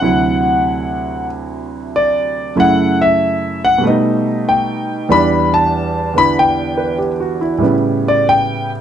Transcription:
Already playing: F#5
0.01 D2 C3 F#3 E4
1.96 D5
2.56 F#2 C#3 A3 E4
2.60 F#5
3.01 E5
3.65 F#5
3.78 B2 G3
3.84 A3 B3 D#5
3.89 D#4
4.49 G5
5.09 E2 E3 G3 D4 B5
5.54 A5
6.14 D3 B3 E4
6.18 B5
6.39 G5
6.78 B4
6.98 G4
7.20 F#4
7.41 E4
7.58 A2 G3 B3
7.64 C#3
8.08 D5
8.29 G5

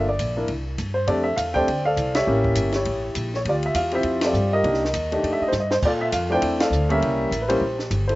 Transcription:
Already playing: G1
0.09 D5
0.19 A#1, kick, hi-hat pedal, ride
0.37 A#3 D4 E4 A#4
0.48 C2, kick, ride
0.78 G2, kick, hi-hat pedal, ride
0.94 C5
1.07 F2 A3 C4 D4 G4 A4 D5, kick, ride
1.24 E5
1.36 E2 F5, kick, hi-hat pedal, ride
1.54 A3 C4 D4 G4 C5 D5 G5, kick
1.67 D2, kick, ride
1.85 A4 D5 F5
1.97 C2, kick, hi-hat pedal, ride
2.15 G4 C#5 E5, snare, ride
2.27 A1 A#3 C#4 E4 G4
2.44 kick
2.55 G1, kick, hi-hat pedal, ride
2.72 E4 G4 C#5, snare, ride
2.85 A1, kick, ride
3.15 A#1, kick, hi-hat pedal, ride
3.34 C#5, snare
3.45 D2 G4, kick, ride
3.49 F4 D5
3.63 E5, ride
3.74 E2 F5, kick, hi-hat pedal, ride
3.91 C4 E4 F4 G4 C5 E5, ride
4.03 F2, kick, ride
4.21 C4 E4 A4, snare, ride
4.26 F4 G4 D5
4.33 G2, hi-hat pedal
4.53 G4 A#4 D#5
4.63 C2 A#3 D4 D#4 G4, kick, ride
4.74 snare
4.85 snare
4.93 D#2, kick, hi-hat pedal, ride
5.12 A3 D4 D#4 G4, ride
5.23 F2, kick, ride
5.33 E5
5.41 D#5, muted upright bass stroke
5.48 C5
5.52 G2, snare, hi-hat pedal
5.60 D#5
5.71 C5, snare
5.82 A#2 F4 A4 D5, kick, crash
6.01 E5
6.12 F2 F5, kick, hi-hat pedal, ride
6.29 A3 C4 D4 E4 G5
6.34 C5 D5
6.42 E2, kick, ride
6.60 A4 D5 F5, snare, ride
6.70 D2, hi-hat pedal
6.89 G3 A#3 C#4 G4 A#4 E5, ride
7.02 C2, kick, ride
7.31 A1, kick, hi-hat pedal, ride
7.41 B4
7.48 G3 A#3 C#4 E4 G4 C5, ride
7.61 A#1, kick
7.79 snare
7.91 G1, kick, hi-hat pedal, ride
8.08 E4 A4 C5, ride

